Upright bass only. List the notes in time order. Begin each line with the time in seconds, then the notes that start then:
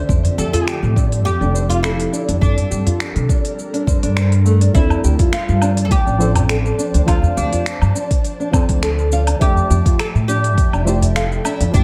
0.09 F2
0.38 F2
0.83 A2
1.25 F2
1.41 F1
2.28 F2
2.42 G2
2.71 G2
3.16 C3
4.03 G2
4.75 D2
5.04 D2
5.49 G2
5.91 D2
6.07 A1
6.94 D2
7.08 D2
7.37 D2
7.82 G2
8.69 D2
9.41 F2
9.70 F2
10.15 A2
10.58 F2
10.73 F1
11.60 F2
11.74 G2